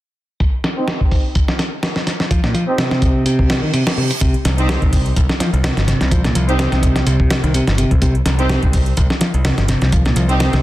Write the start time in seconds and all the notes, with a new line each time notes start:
0.40 kick, closed hi-hat
0.64 snare, closed hi-hat
0.77 C4 D#4 G4 C5
0.88 snare, closed hi-hat
1.01 kick
1.11 kick, open hi-hat
1.35 kick, closed hi-hat
1.48 snare
1.59 snare, closed hi-hat
1.83 snare, closed hi-hat
1.96 snare
2.07 snare, closed hi-hat
2.20 snare
2.31 F3, kick, closed hi-hat
2.44 A#2, snare
2.54 F3, closed hi-hat
2.67 C4 D#4 G4 C5
2.78 C3, snare, closed hi-hat
2.91 C3, snare
3.02 kick, closed hi-hat
3.26 C3, closed hi-hat, reverse cymbal
3.39 kick
3.50 snare, closed hi-hat
3.63 D#3
3.74 C3, closed hi-hat
3.87 snare, closed hi-hat
3.98 C3
4.11 closed hi-hat
4.21 C3, kick, closed hi-hat
4.34 closed hi-hat
4.45 C2, snare, closed hi-hat
4.58 C4 D#4 G4 C5, closed hi-hat
4.69 C3, snare, closed hi-hat
4.82 C2, kick, closed hi-hat
4.93 kick, closed hi-hat, open hi-hat
5.06 closed hi-hat
5.16 C2, kick, closed hi-hat
5.29 snare
5.40 F3, snare, closed hi-hat
5.53 C2, closed hi-hat
5.64 C3, snare, closed hi-hat
5.77 G1, snare, closed hi-hat
5.87 C3, snare, closed hi-hat
6.01 C2 C3, snare, closed hi-hat
6.11 F3, kick, closed hi-hat
6.24 A#2, snare, closed hi-hat
6.35 C2 F3, closed hi-hat
6.48 C4 D#4 G4 C5, closed hi-hat
6.59 C3, snare, closed hi-hat
6.72 C2 C3, snare, closed hi-hat
6.83 kick, closed hi-hat
6.96 snare, closed hi-hat
7.07 C2 C3, closed hi-hat
7.20 kick
7.30 snare, closed hi-hat
7.44 C2 D#3, closed hi-hat
7.54 C3, closed hi-hat
7.67 G1, snare, closed hi-hat
7.78 C3, closed hi-hat
7.91 C2, kick, closed hi-hat
8.02 C3, kick, closed hi-hat
8.15 closed hi-hat
8.26 C2, snare, closed hi-hat
8.39 C4 D#4 G4 C5, closed hi-hat
8.49 C3, snare, closed hi-hat
8.63 C2, kick, closed hi-hat
8.73 kick, closed hi-hat, open hi-hat
8.86 closed hi-hat
8.97 C2, kick, closed hi-hat
9.10 snare
9.21 F3, snare, closed hi-hat
9.34 C2, closed hi-hat
9.45 C3, snare, closed hi-hat
9.58 G1, snare, closed hi-hat
9.68 C3, snare, closed hi-hat
9.82 C2 C3, snare, closed hi-hat
9.92 F3, kick, closed hi-hat
10.05 A#2, snare, closed hi-hat
10.16 C2 F3, closed hi-hat
10.29 C4 D#4 G4 C5, closed hi-hat
10.40 C3, snare, closed hi-hat
10.53 C2 C3, snare, closed hi-hat